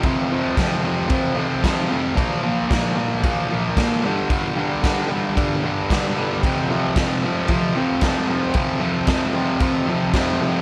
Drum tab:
CC |x-x-x-x-|x-x-x-x-|x-x-x-x-|x-x-x-x-|
SD |--o---o-|--o---o-|--o---o-|--o---o-|
BD |o-o-o-o-|o-o-o-o-|o-o-o-o-|o-o-o-o-|

CC |x-x-x-x-|
SD |--o---o-|
BD |o-o-o-o-|